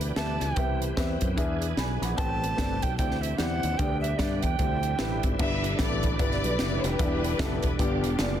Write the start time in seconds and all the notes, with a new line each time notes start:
Already playing: D2 E3 B3 D4 G4
0.01 closed hi-hat
0.16 D2 D4 G4 B4 E5 A5, snare, closed hi-hat
0.40 C#2 G5, snare, closed hi-hat
0.56 C2 C3 B3 C4 G4 B4 E5, kick, closed hi-hat
0.82 closed hi-hat
0.97 E2 C4 G4 B4 E5, kick, snare, closed hi-hat
1.21 F#2, kick, closed hi-hat
1.36 E2 E3 D4 G#4 B4 E5, kick, closed hi-hat
1.62 closed hi-hat
1.77 B1 D5 G#5 B5, snare, closed hi-hat
2.01 A#1 F#5 B5, snare, closed hi-hat
2.16 A1 A2 G3 B3 C4 A4 B4 G5 A5, kick, closed hi-hat
2.44 closed hi-hat
2.57 G1 C4 A4 B4 D5, kick, snare, closed hi-hat
2.82 B1 G5, kick, closed hi-hat
2.97 D2 D3 E3 C4 D4 E4 G4 D5 G5, kick, closed hi-hat
3.11 snare
3.21 E5, closed hi-hat
3.38 E2 C4 E4 G4 D5 F#5, snare, closed hi-hat
3.63 D#2, closed hi-hat
3.77 D2 D3 G3 B3 D4 G4 D5 G5, kick, closed hi-hat
4.01 E5, closed hi-hat
4.18 G2 B3 D4 G4 D5 E5, kick, snare, closed hi-hat
4.42 E2 G5, kick, closed hi-hat
4.59 D2 D3 C4 E4 G4 D5, kick, closed hi-hat
4.83 closed hi-hat
4.98 A1 C4 E4 G4 B4 E5, snare, closed hi-hat
5.11 B5
5.23 G#1, kick, closed hi-hat
5.39 G1 G2 D3 G3 B3 D4 E4 G4 B4 D5 E5, kick, crash
5.64 closed hi-hat
5.79 A1 B3 E4 G4 A4 B4 D5, kick, snare, closed hi-hat
6.03 kick, closed hi-hat
6.19 G1 B3 E4 G4 B4 D5, kick, closed hi-hat
6.32 snare
6.44 B1, closed hi-hat
6.59 F#1 B3 E4 G4 D5, snare, closed hi-hat
6.83 F1 D4 G4 B4, snare, closed hi-hat
6.99 E1 D3 E3 B3 E4 G4 D5, kick, closed hi-hat
7.24 closed hi-hat
7.39 F#1 B3 E4 G4 A4, kick, snare, closed hi-hat
7.63 E1 B4, kick, closed hi-hat
7.79 G1 G2 B3 D4 F4 G4 D5, kick, closed hi-hat
8.03 E1, closed hi-hat
8.19 F#1 B3 F4 G4 D5, snare, closed hi-hat